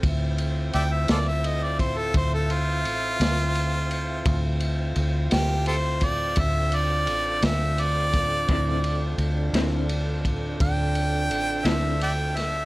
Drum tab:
RD |xxxxxxxxxxxx|xxxxxxxxxxxx|xxxxxxxxxxxx|
SD |---o-----o--|---o-----o-o|---o-----o-o|
BD |o----oo-----|o----oo----o|o----oo-----|